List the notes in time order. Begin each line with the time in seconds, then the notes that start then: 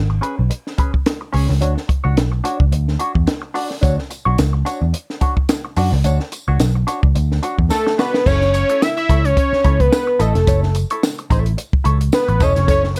Already playing: G#1
0.10 muted hollow-body jazz guitar stroke
0.21 C#4 G#4 B4, closed hi-hat
0.37 B1, muted hollow-body jazz guitar stroke
0.50 muted hollow-body jazz guitar stroke, closed hi-hat
0.67 snare
0.78 C#4 G#4 B4, kick, closed hi-hat
0.93 muted hollow-body jazz guitar stroke, kick
1.06 muted hollow-body jazz guitar stroke, snare, closed hi-hat
1.21 muted hollow-body jazz guitar stroke
1.33 C#2 C#4 G#4 C#5, open hi-hat
1.48 C#2, muted hollow-body jazz guitar stroke, snare
1.61 D2 D4 F#4 C#5, closed hi-hat
1.76 muted hollow-body jazz guitar stroke, snare
1.88 muted hollow-body jazz guitar stroke, kick, closed hi-hat
2.04 C#2 D4 F#4 C#5
2.17 B1, snare, closed hi-hat
2.32 muted hollow-body jazz guitar stroke
2.44 D4 F#4 C#5, closed hi-hat
2.60 C#2, muted hollow-body jazz guitar stroke, kick
2.72 D2, muted hollow-body jazz guitar stroke, closed hi-hat
2.88 snare
2.99 D4 F#4 C#5, closed hi-hat
3.15 E2, muted hollow-body jazz guitar stroke, kick
3.27 muted hollow-body jazz guitar stroke, snare, closed hi-hat
3.42 muted hollow-body jazz guitar stroke
3.54 D4 F#4 D5, open hi-hat
3.70 muted hollow-body jazz guitar stroke, snare
3.81 D2 D4 F#4 C#5, kick, closed hi-hat, tambourine
3.98 muted hollow-body jazz guitar stroke, snare
4.10 muted hollow-body jazz guitar stroke, closed hi-hat, tambourine
4.25 B1 D4 F#4 C#5
4.38 C#2, snare, closed hi-hat, tambourine
4.53 muted hollow-body jazz guitar stroke
4.65 D4 F#4 C#5, closed hi-hat, tambourine
4.81 E2, muted hollow-body jazz guitar stroke
4.93 muted hollow-body jazz guitar stroke, closed hi-hat
5.10 snare
5.21 D4 F#4 C#5, kick, closed hi-hat
5.36 muted hollow-body jazz guitar stroke, kick
5.49 muted hollow-body jazz guitar stroke, snare, closed hi-hat, tambourine
5.65 muted hollow-body jazz guitar stroke
5.76 F#2 D4 F#4 D5, open hi-hat, tambourine
5.92 C#2, muted hollow-body jazz guitar stroke, snare
6.04 D2 D4 F#4 C#5, closed hi-hat, tambourine
6.20 muted hollow-body jazz guitar stroke, snare
6.32 muted hollow-body jazz guitar stroke, closed hi-hat, tambourine
6.48 C#2 D4 F#4 C#5
6.60 B1, snare, closed hi-hat, tambourine
6.75 muted hollow-body jazz guitar stroke
6.87 D4 F#4 C#5, closed hi-hat, tambourine
7.03 C#2, muted hollow-body jazz guitar stroke, kick
7.15 D2, muted hollow-body jazz guitar stroke, closed hi-hat, tambourine
7.32 snare
7.43 D4 F#4 C#5, closed hi-hat, tambourine
7.58 E2, muted hollow-body jazz guitar stroke, kick
7.70 A4, muted hollow-body jazz guitar stroke, snare, tambourine
7.86 muted hollow-body jazz guitar stroke, snare
7.98 D4 F#4 B4 D5, snare, tambourine
8.14 muted hollow-body jazz guitar stroke, snare
8.26 F#1 E4 A4 C#5, kick, crash, tambourine
8.42 muted hollow-body jazz guitar stroke, snare, closed hi-hat
8.53 C#5, muted hollow-body jazz guitar stroke, closed hi-hat, tambourine
8.69 E4 A4 C#5, closed hi-hat
8.81 E5, snare, tambourine
8.96 E5, muted hollow-body jazz guitar stroke, closed hi-hat
9.09 C#2 E4 A4 C#5, kick, closed hi-hat, tambourine
9.24 C#5, muted hollow-body jazz guitar stroke, closed hi-hat
9.37 muted hollow-body jazz guitar stroke, kick, closed hi-hat, tambourine
9.53 muted picked electric bass stroke, snare
9.64 C#2 E4 A4 C#5, kick, closed hi-hat
9.80 B4, muted hollow-body jazz guitar stroke, kick, closed hi-hat
9.93 muted hollow-body jazz guitar stroke, snare, tambourine
10.07 muted hollow-body jazz guitar stroke
10.19 A1 E4 A4 D#5, closed hi-hat, tambourine
10.35 F1, muted hollow-body jazz guitar stroke, snare, closed hi-hat
10.47 F#1 E4 A4 C#5, kick, closed hi-hat, tambourine
10.63 muted hollow-body jazz guitar stroke, snare
10.75 muted hollow-body jazz guitar stroke, closed hi-hat, tambourine
10.90 E4 A4 C#5, closed hi-hat
11.03 snare, tambourine
11.18 muted hollow-body jazz guitar stroke, closed hi-hat
11.30 A1 E4 A4 C#5, kick, closed hi-hat, tambourine
11.45 muted hollow-body jazz guitar stroke, closed hi-hat
11.57 muted hollow-body jazz guitar stroke, closed hi-hat, tambourine
11.73 muted picked electric bass stroke, kick
11.84 C#2 E4 A4 C#5, closed hi-hat
12.01 muted hollow-body jazz guitar stroke, closed hi-hat
12.12 B4, muted hollow-body jazz guitar stroke, snare, tambourine
12.28 A1, muted hollow-body jazz guitar stroke, closed hi-hat
12.40 E1 E4 A4 C#5 D#5, kick, closed hi-hat, tambourine
12.56 F1, muted hollow-body jazz guitar stroke, snare, closed hi-hat
12.67 F#1 E4 A4 C#5, kick, closed hi-hat, tambourine
12.83 muted hollow-body jazz guitar stroke, snare
12.95 muted hollow-body jazz guitar stroke, closed hi-hat, tambourine